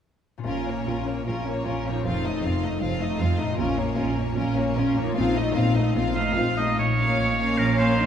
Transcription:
0.38 2.06 A#2 soft
0.38 2.04 C#4 soft
0.38 1.96 F4 soft
0.43 0.81 A#1 soft
0.43 0.66 C#4 soft
0.43 0.65 F4 soft
0.43 2.05 A#4 soft
0.43 0.66 A#4 soft
0.47 0.81 A#2 soft
0.67 0.87 A#3 soft
0.67 0.87 C#4 soft
0.67 0.88 C#5 soft
0.86 1.21 A#1 soft
0.86 1.21 A#2 soft
0.86 1.07 C#4 soft
0.86 1.07 F4 soft
0.86 1.07 A#4 soft
1.06 1.27 A#3 soft
1.06 1.27 C#4 soft
1.06 1.27 C#5 soft
1.26 1.60 A#1 soft
1.26 1.60 A#2 soft
1.26 1.45 C#4 soft
1.26 1.45 F4 soft
1.26 1.45 A#4 soft
1.45 1.66 A#3 soft
1.45 1.66 C#4 soft
1.45 1.66 C#5 soft
1.65 1.99 A#1 soft
1.65 1.99 A#2 soft
1.65 1.86 C#4 soft
1.65 1.85 F4 soft
1.65 1.86 A#4 soft
1.86 3.51 F2 soft
1.86 2.06 A#3 soft
1.86 2.06 C#4 soft
1.86 2.06 C#5 soft
1.92 3.53 D#4 soft
1.97 3.49 F4 soft
2.02 2.37 F1 soft
2.02 2.37 F2 soft
2.02 3.58 A4 soft
2.06 2.23 C4 soft
2.06 2.24 F4 soft
2.06 2.24 F5 soft
2.25 2.44 A3 soft
2.25 2.44 D#4 soft
2.25 2.44 D#5 soft
2.43 2.76 F1 soft
2.43 2.76 F2 soft
2.43 2.62 C4 soft
2.43 2.63 F4 soft
2.43 2.63 F5 soft
2.62 2.82 A3 soft
2.62 2.82 D#4 soft
2.62 2.81 D#5 soft
2.81 3.14 F1 soft
2.81 3.13 F2 soft
2.81 2.99 C4 soft
2.81 3.00 F4 soft
2.81 2.99 F5 soft
3.00 3.20 A3 soft
3.00 3.20 D#4 soft
3.00 3.19 D#5 soft
3.20 3.52 F1 soft
3.20 3.52 F2 soft
3.20 3.39 C4 soft
3.20 3.40 F4 soft
3.20 3.39 F5 soft
3.38 4.97 A#2 soft
3.38 3.58 A3 soft
3.38 3.59 D#4 soft
3.38 3.58 D#5 soft
3.46 5.11 C#4 soft
3.50 5.06 F4 soft
3.55 3.91 A#2 soft
3.55 5.15 A#4 soft
3.55 3.76 A#4 soft
3.59 3.91 A#1 medium
3.59 3.77 C#4 soft
3.59 3.77 F4 soft
3.78 3.98 A#3 soft
3.78 3.98 C#4 soft
3.78 3.98 C#5 soft
3.97 4.31 A#1 medium
3.97 4.30 A#2 soft
3.97 4.17 C#4 soft
3.97 4.17 F4 soft
3.97 4.17 A#4 soft
4.17 4.37 A#3 soft
4.17 4.37 C#4 soft
4.17 4.37 C#5 soft
4.36 4.70 A#1 medium
4.36 4.69 A#2 medium
4.36 4.55 C#4 soft
4.36 4.55 F4 soft
4.36 4.55 A#4 soft
4.56 4.76 A#3 soft
4.56 4.76 C#4 soft
4.56 4.76 C#5 soft
4.75 5.10 A#1 medium
4.75 5.09 A#2 soft
4.75 4.96 C#4 soft
4.75 4.96 F4 soft
4.75 4.96 A#4 soft
4.96 6.71 A#2 soft
4.96 5.16 A#3 soft
4.96 5.16 C#4 soft
4.96 5.16 C#5 soft
5.02 6.73 D#4 soft
5.07 8.06 F4 soft
5.11 5.49 A#2 medium
5.11 6.77 A4 soft
5.16 5.50 A#1 medium
5.16 5.35 C4 soft
5.16 5.35 F4 soft
5.16 5.35 F5 soft
5.36 5.57 A3 soft
5.36 5.56 D#4 soft
5.36 5.56 D#5 soft
5.55 5.89 A#1 medium
5.55 5.89 A#2 medium
5.55 5.76 C4 soft
5.55 5.75 F4 soft
5.55 5.76 F5 soft
5.75 5.96 A3 soft
5.75 5.96 D#4 soft
5.75 5.95 D#5 soft
5.95 6.30 A#1 medium
5.95 6.29 A#2 soft
5.95 6.15 C4 soft
5.95 6.15 F4 soft
5.95 6.14 F5 soft
6.16 6.37 A3 soft
6.16 6.37 D#4 soft
6.16 6.36 D#5 soft
6.16 6.54 F5 medium
6.36 6.71 A#1 soft
6.36 6.71 A#2 soft
6.36 6.58 C4 soft
6.36 6.57 F4 soft
6.36 6.57 F5 soft
6.57 6.79 A3 soft
6.57 6.78 D#4 soft
6.57 6.78 D#5 medium
6.57 6.78 D#5 soft
6.78 7.12 A#1 soft
6.78 8.06 A#2 soft
6.78 7.18 C#5 medium
6.97 7.78 A#3 soft
6.97 7.38 A#3 soft
6.97 7.37 C#4 soft
6.97 7.37 F5 soft
7.19 7.52 A#1 soft
7.19 7.98 A#4 soft
7.19 7.60 C#5 medium
7.38 7.78 A#3 soft
7.38 7.77 C#4 soft
7.38 7.76 F5 soft
7.38 8.06 F5 soft
7.58 7.92 A#1 medium
7.58 8.06 F3 soft
7.58 7.96 C#4 soft
7.58 7.77 A#4 medium
7.78 8.06 A#3 soft
7.78 8.06 C#4 soft
7.78 8.06 C5 medium
7.78 8.06 F5 soft
7.98 8.06 A#1 soft
7.98 8.06 D#4 soft
7.98 8.06 A#4 soft

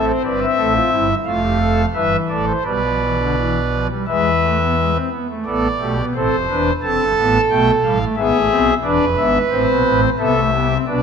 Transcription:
0.00 0.12 A1 medium
0.00 0.11 A2 medium
0.00 1.08 C4 medium
0.00 0.12 A4 medium
0.07 0.22 C5 medium
0.24 0.45 G1 medium
0.24 0.45 G2 medium
0.24 0.45 B4 medium
0.24 0.39 D5 medium
0.42 1.15 E5 medium
0.58 0.79 A1 medium
0.58 0.79 A2 medium
0.58 0.73 A4 medium
0.75 0.90 F4 medium
0.91 1.13 G1 soft
0.91 1.13 G2 soft
0.91 1.13 E4 medium
1.26 1.86 F1 medium
1.26 1.86 F2 medium
1.26 1.86 A3 medium
1.26 1.41 F4 medium
1.26 1.86 F5 medium
1.42 1.58 G4 medium
1.60 1.82 A4 medium
1.94 2.16 G1 medium
1.94 2.16 G2 medium
1.94 2.56 E3 medium
1.94 2.17 B4 medium
1.94 2.17 E5 medium
2.29 2.52 A1 medium
2.29 2.52 A2 medium
2.29 2.52 A4 medium
2.29 2.45 D5 medium
2.47 2.63 C5 medium
2.65 3.87 B1 medium
2.65 3.87 B2 medium
2.65 2.81 G3 medium
2.65 3.87 B4 medium
2.65 3.87 D5 medium
2.84 2.99 F3 medium
3.02 3.17 E3 medium
3.19 3.35 D3 medium
3.37 3.59 E3 medium
3.73 3.88 F3 soft
3.90 4.05 G3 medium
4.07 4.98 E2 medium
4.07 4.98 E3 medium
4.07 4.29 G#3 medium
4.07 4.97 B4 medium
4.07 4.97 E5 medium
4.42 4.57 A3 medium
4.60 4.75 B3 medium
4.77 4.92 G#3 medium
4.94 5.09 C4 medium
5.12 5.27 B3 medium
5.30 5.45 A3 soft
5.45 5.67 A1 medium
5.45 5.67 A2 medium
5.45 5.67 B3 medium
5.45 5.68 A4 medium
5.45 6.05 D5 medium
5.80 6.01 B1 medium
5.80 6.02 B2 medium
5.80 5.95 A3 medium
5.80 6.02 G4 medium
5.98 6.13 B3 medium
6.14 6.30 A1 medium
6.14 6.30 A2 medium
6.14 6.36 C4 medium
6.14 6.36 A4 medium
6.14 6.73 C5 medium
6.32 6.47 F1 medium
6.32 6.47 F2 medium
6.50 6.71 E1 medium
6.50 6.70 E2 medium
6.50 6.71 D4 medium
6.50 6.71 B4 medium
6.83 6.97 F1 medium
6.83 6.97 F2 medium
6.83 7.04 C4 medium
6.83 7.98 A4 medium
6.83 7.41 A5 medium
6.99 7.14 G1 medium
6.99 7.14 G2 medium
7.17 7.38 A1 medium
7.17 7.38 A2 medium
7.17 7.38 B3 medium
7.50 7.71 B1 medium
7.50 7.71 B2 medium
7.50 7.71 A3 medium
7.50 7.71 G5 medium
7.84 8.05 A1 medium
7.84 8.04 A2 medium
7.84 7.98 G3 medium
7.84 8.05 F5 medium
8.00 8.15 A3 medium
8.17 8.31 G#1 loud
8.17 8.31 G#2 medium
8.17 8.38 B3 medium
8.17 8.74 G#4 medium
8.17 8.74 E5 medium
8.34 8.48 A1 medium
8.34 8.48 A2 medium
8.50 8.71 B1 medium
8.50 8.71 B2 medium
8.50 8.71 C4 medium
8.84 8.99 E1 medium
8.84 8.98 E2 medium
8.84 9.05 D4 medium
8.84 10.00 B4 medium
8.84 9.05 D5 medium
9.00 9.15 F1 medium
9.00 9.15 F2 medium
9.17 9.38 G#1 medium
9.17 9.38 G#2 medium
9.17 9.38 B3 medium
9.17 9.38 E5 medium
9.51 9.66 A1 medium
9.51 9.66 A2 medium
9.51 10.09 C4 medium
9.51 10.10 C5 medium
9.68 9.83 B1 medium
9.68 9.83 B2 medium
9.84 10.05 A1 medium
9.84 10.05 A2 medium
10.18 10.78 C2 loud
10.18 10.78 C3 medium
10.18 10.33 B3 medium
10.18 10.40 A4 medium
10.18 10.78 E5 medium
10.35 10.51 A3 medium
10.52 10.68 B3 medium
10.52 10.74 G4 medium
10.70 10.85 C4 medium
10.87 11.03 B1 medium
10.87 11.03 B2 medium
10.87 11.03 D4 medium
10.87 11.03 B4 medium
10.87 11.03 D5 medium

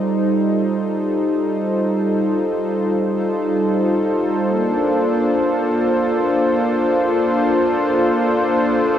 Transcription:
0.00 4.48 G3 medium
0.00 4.47 D#4 medium
0.00 8.99 F4 medium
0.00 8.99 A4 medium
0.00 8.99 C5 medium
0.00 0.36 D5 medium
4.47 8.99 A#3 medium
4.52 8.99 D4 medium

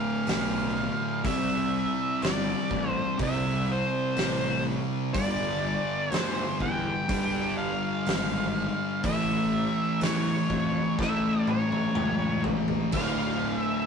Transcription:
0.00 1.21 D2 medium
0.00 1.22 A2 medium
0.00 1.23 D3 medium
0.00 1.29 F5 loud
0.27 0.87 B1 loud
0.27 snare loud
0.27 open hi-hat medium
1.24 1.84 C2 loud
1.24 3.16 C3 medium
1.24 3.21 G3 loud
1.24 3.18 C4 loud
1.24 2.23 E5 loud
1.24 kick loud
1.24 open hi-hat medium
2.22 2.52 G1 medium
2.22 2.89 D5 loud
2.22 snare loud
2.22 open hi-hat medium
2.71 3.01 A1 loud
2.71 kick medium
2.89 3.16 C5 loud
3.19 3.79 C2 loud
3.19 5.12 C3 medium
3.19 5.13 G3 medium
3.19 5.13 C4 medium
3.19 3.71 E5 loud
3.19 kick loud
3.19 open hi-hat medium
3.72 4.64 C5 medium
4.17 4.77 A1 loud
4.17 snare loud
4.17 open hi-hat medium
5.14 5.74 G1 medium
5.14 7.07 G2 loud
5.14 7.07 D3 loud
5.14 7.08 G3 loud
5.14 6.15 D5 loud
5.14 kick loud
5.14 open hi-hat medium
6.11 6.41 D2 medium
6.11 6.65 C5 loud
6.11 snare loud
6.11 open hi-hat medium
6.60 6.90 E2 medium
6.60 7.57 G5 loud
6.60 kick medium
7.09 9.01 G2 medium
7.09 7.69 G2 loud
7.09 9.02 D3 medium
7.09 9.03 G3 loud
7.09 kick loud
7.09 open hi-hat medium
7.58 9.05 F5 loud
8.06 8.66 G#1 loud
8.06 snare loud
8.06 open hi-hat medium
9.04 9.64 A1 loud
9.04 10.96 A2 medium
9.04 10.97 E3 loud
9.04 9.99 E5 loud
9.04 kick loud
9.04 open hi-hat medium
9.08 11.02 A3 loud
10.01 10.31 E2 medium
10.01 11.00 C#5 loud
10.01 snare loud
10.01 open hi-hat medium
10.50 10.80 F2 medium
10.50 kick medium
10.98 12.91 A2 medium
10.98 11.59 A2 medium
10.98 12.92 E3 medium
10.98 12.92 A3 loud
10.98 11.50 E5 loud
10.98 kick loud
10.98 snare medium
11.47 12.43 C#5 medium
11.47 high tom medium
11.72 high tom medium
11.95 12.56 C#2 loud
11.95 mid tom medium
12.44 floor tom loud
12.68 floor tom medium
12.92 13.53 D1 medium
12.92 13.86 D2 medium
12.92 13.86 A2 loud
12.92 13.57 F5 loud
12.92 kick loud
12.92 open hi-hat medium
12.92 crash loud
12.97 13.86 D3 loud
13.57 13.86 E5 loud

